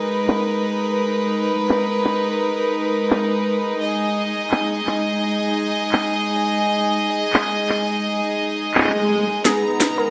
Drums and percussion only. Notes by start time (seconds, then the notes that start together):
0.27 clap
1.69 clap
2.04 clap
3.10 clap
4.51 clap
4.86 clap
5.92 clap
7.33 clap
7.69 clap
8.74 clap
8.78 clap
8.80 clap
8.84 clap
8.86 clap
8.89 clap
9.45 snare, closed hi-hat
9.80 snare, closed hi-hat